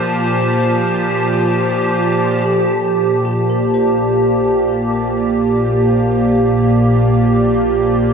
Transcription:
Already playing: A#2 F3 A#3 F4 G4 C5 A5
2.46 A#1 A#3 F4 A4
2.51 A#3
3.02 D5
3.25 G4
3.50 A#4
3.74 C5

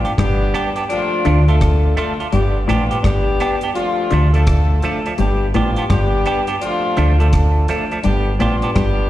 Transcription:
Already playing: F3 B3 D4 F4
0.05 B3 D4 G4, closed hi-hat
0.17 G1 G2 G3 B3 D4 G4, kick, cross-stick, closed hi-hat
0.54 B3 D4 G4, closed hi-hat
0.76 B3 D4 G4, closed hi-hat
0.89 F3 A3 D4 F4, closed hi-hat
1.25 D2 D3 A3 D4 F4, closed hi-hat
1.47 A3 D4 F4 A4, closed hi-hat
1.61 kick, cross-stick, closed hi-hat
1.97 A3 D4 F4 A4, closed hi-hat
2.20 A3 D4 F4, closed hi-hat
2.32 G1 G2 G3 B3 D4 G4, closed hi-hat
2.68 A1 A2 F3 B3 D4 F4 G4, closed hi-hat
2.91 B3 D4 G4, closed hi-hat
3.04 G1 G2 G3 B3 D4 G4, kick, cross-stick, closed hi-hat
3.40 B3 D4 G4, closed hi-hat
3.61 B3 D4 G4, closed hi-hat
3.75 F3 A3 D4 F4, closed hi-hat
4.11 D2 D3 F3 A3 D4, closed hi-hat
4.32 F3 A3 D4 F4 A4, closed hi-hat
4.47 kick, cross-stick, closed hi-hat
4.82 F3 A3 D4 F4 A4, closed hi-hat
5.06 F3 A3 D4, closed hi-hat
5.18 G1 G2 G3 B3 D4 G4, closed hi-hat
5.54 A1 A2 F3 B3 D4 F4 G4, closed hi-hat
5.76 B3 D4 G4, closed hi-hat
5.90 G1 G2 G3 B3 D4 G4, kick, cross-stick, closed hi-hat
6.26 B3 D4 G4, closed hi-hat
6.47 B3 D4 G4, closed hi-hat
6.62 F3 A3 D4 F4, closed hi-hat
6.97 D2 D3 F3 A3 D4, closed hi-hat
7.19 F3 A3 D4 F4 A4, closed hi-hat
7.33 kick, cross-stick, closed hi-hat
7.68 F3 A3 D4 F4 A4, closed hi-hat
7.91 F3 A3 D4, closed hi-hat
8.04 G1 G2 G3 B3 D4 G4, closed hi-hat
8.39 A1 A2 F3 B3 D4 F4 G4, closed hi-hat
8.62 B3 D4 G4, closed hi-hat
8.75 G1 G2 G3 B3 D4 G4, kick, cross-stick, closed hi-hat

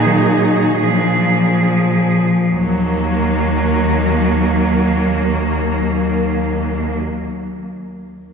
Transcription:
Already playing: A#2 D#4 G#4
0.05 F#3
0.81 A#2 F3 D4 G#4
2.55 D#2 F#3 A#3

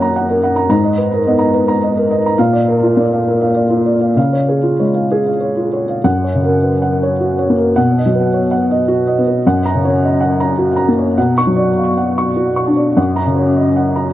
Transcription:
Already playing: F#2 A#3 A#4 C#5 F#5 A#5
0.02 A#5
0.16 F#5
0.29 A#4
0.43 F#5
0.56 A#5
0.69 G#2 A#5
0.84 D#5
0.97 B4
1.13 A#4
1.27 B3 D#5
1.39 A#5
1.54 B4
1.68 A#5
1.83 D#5
1.97 A#4
2.11 D#5
2.26 A#5
2.38 A#2 F5
2.53 D5
2.68 A#4
2.83 F4
2.97 A#3 D5
3.12 F5
3.28 A#4
3.41 F5
3.55 D5
3.70 F4
3.86 D5
4.01 F5
4.16 C#3 F5
4.33 C#5
4.49 G#4
4.63 F4
4.79 G#3 C#5
4.94 F5
5.12 G#4
5.26 F5
5.40 C#5
5.57 F4
5.73 C#5
5.88 F5
6.04 F#2 F#5
6.24 C#5
6.35 C#3
6.44 A#4
6.63 B4
6.82 F#5
7.03 C#5
7.21 F#4
7.38 C#5
7.49 A#3
7.58 A#4
7.76 B2 F#5
7.98 D#5
8.06 F#3
8.15 B4
8.33 C#5
8.51 F#5
8.71 D#5
8.88 F#4
9.07 D#5
9.18 B3
9.27 B4
9.47 F#2 F#5
9.66 A#5
9.75 C#3
9.85 C#5
10.03 D#5
10.21 F#5
10.40 A#5
10.58 F#4
10.76 A#5
10.88 A#3
10.99 C#5
11.18 B2 F#5
11.38 C#6
11.47 F#3
11.56 D5
11.77 F5
11.97 F#5
12.18 C#6
12.36 F#4
12.56 C#6
12.67 D4
12.76 D5
12.97 F#2 F#5
13.16 A#5
13.26 C#3
13.36 C#5
13.57 D#5
13.76 F#5
13.96 A#5

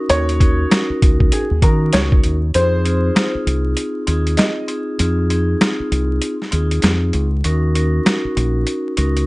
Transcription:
0.09 D#2 C#4 D#4 F#4 A#4 C#5, closed hi-hat
0.29 closed hi-hat
0.40 C#4 D#4 F#4 A#4, kick, closed hi-hat
0.70 C#4 D#4 F#4 A#4, snare, closed hi-hat
0.90 muted fingered electric bass stroke
1.02 C#2, kick, closed hi-hat
1.20 kick
1.32 G#4, closed hi-hat
1.51 D#2
1.62 D#3 C#4 D#4 F#4 A#4, kick, closed hi-hat
1.93 C#2 C#5, snare, closed hi-hat
2.12 kick
2.24 D#2, closed hi-hat
2.54 F2 C4 D#4 F4 G#4 C5, closed hi-hat
2.84 C4 D#4 F4 G#4, closed hi-hat
3.15 C4 D#4 F4 G#4, snare, closed hi-hat
3.35 muted fingered electric bass stroke
3.47 C2, closed hi-hat
3.77 closed hi-hat
4.07 D#2 C4 D#4 F4 G#4, closed hi-hat
4.27 closed hi-hat
4.37 D#5, snare, closed hi-hat
4.68 C4 D#4 F4 G#4, closed hi-hat
4.99 F2 C4 D#4 F4 G#4, closed hi-hat
5.30 C4 D#4 F4 G#4, closed hi-hat
5.61 C4 D#4 F4 G#4, snare, closed hi-hat
5.80 muted fingered electric bass stroke
5.92 C2, closed hi-hat
6.22 closed hi-hat
6.42 snare
6.51 D#2 C4 D#4 F4 G#4, closed hi-hat
6.71 closed hi-hat
6.82 F2, snare, closed hi-hat
7.13 C#2, closed hi-hat
7.44 D#2 C#4 D#4 F#4 A#4, closed hi-hat
7.75 C#4 D#4 F#4 A#4, closed hi-hat
8.05 C#4 D#4 F#4 A#4, snare, closed hi-hat
8.25 muted fingered electric bass stroke
8.37 A#1, closed hi-hat
8.67 closed hi-hat
8.97 C#2 C#4 D#4 F#4 A#4, closed hi-hat
9.17 closed hi-hat

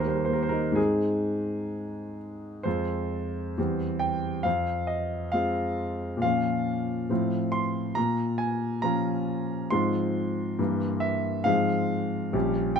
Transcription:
Already playing: D#2
0.00 A#4
0.05 G3 C5
0.16 A#4
0.25 A#3 C5
0.33 A#4
0.43 C5
0.49 D#4 A#4
0.72 G#2 G#3 C4 D#4 G#4
2.63 F2 G#3 C4 F4 C5
3.58 E2 G3 C4 G4
3.99 G5
4.43 F2 F5
4.87 D#5
5.32 G#3 C4 F4 F5
6.17 A#2
6.22 F3 C#4 F4 F5
7.10 A2 F3 C4 F4
7.52 C6
7.95 A#2 A#5
8.38 G#5
8.82 F3 C#4 F4 A#5
9.70 G#2 F3 C4 F4 C6
10.59 G2 E3 A#3 A#4
11.00 E5
11.44 G#2 F3 C4 G#4 F5
12.33 A#1 G3 C#4 G4
12.76 G5

